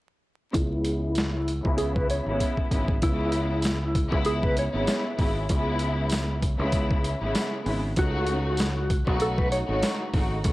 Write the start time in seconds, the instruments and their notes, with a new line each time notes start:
0.54 fingered electric bass C#2, string section C#3 G#3 B3 E4, clean electric guitar E4, kick, closed hi-hat
0.85 closed hi-hat
1.15 snare, closed hi-hat
1.48 closed hi-hat
1.64 fingered electric bass C#2, string section C#3 G#3 B3 E4, kick
1.78 clean electric guitar G#4, closed hi-hat
1.95 clean electric guitar B4, kick
2.10 clean electric guitar C#5, closed hi-hat
2.26 fingered electric bass G#1, string section C#3 G#3 B3 E4
2.40 kick, closed hi-hat
2.57 kick
2.71 fingered electric bass G#1, string section C#3 G#3 B3 E4, kick, closed hi-hat
2.88 kick
3.02 fingered electric bass C#2, string section C#3 G#3 B3 E4, clean electric guitar E4, kick, closed hi-hat
3.32 closed hi-hat
3.62 snare, closed hi-hat, tambourine
3.95 kick, closed hi-hat
4.10 fingered electric bass C#2, string section C#3 G#3 B3 E4, kick
4.25 clean electric guitar G#4, closed hi-hat
4.43 clean electric guitar B4, kick
4.57 clean electric guitar C#5, closed hi-hat
4.73 fingered electric bass G#1, string section C#3 G#3 B3 E4
4.87 snare, closed hi-hat, tambourine
5.18 fingered electric bass G#1, string section C#3 G#3 B3 E4, kick, open hi-hat
5.49 fingered electric bass C#2, string section C#3 G#3 B3 E4, kick, closed hi-hat
5.79 closed hi-hat
6.10 snare, closed hi-hat, tambourine
6.42 kick, closed hi-hat
6.58 fingered electric bass C#2, string section C#3 G#3 B3 E4
6.72 kick, closed hi-hat
6.91 kick
7.04 closed hi-hat
7.21 fingered electric bass G#1, string section C#3 G#3 B3 E4
7.35 snare, closed hi-hat, tambourine
7.65 fingered electric bass G#1, string section C#3 G#3 B3 E4, open hi-hat
7.96 fingered electric bass C#2, string section C#3 A3 D#4 F#4, clean electric guitar F#4, kick, closed hi-hat
8.27 closed hi-hat
8.57 snare, closed hi-hat, tambourine
8.90 kick, closed hi-hat
9.07 fingered electric bass B1, string section C#3 A3 D#4 F#4, kick
9.20 clean electric guitar A4, closed hi-hat
9.38 clean electric guitar B4, kick
9.52 clean electric guitar C#5, closed hi-hat
9.67 fingered electric bass G#1, string section C#3 A3 D#4 F#4
9.83 snare, closed hi-hat, tambourine
10.14 fingered electric bass G#1, string section C#3 A3 D#4 F#4, kick, open hi-hat
10.43 fingered electric bass C#2, string section C#3 A3 B3 F#4, kick, closed hi-hat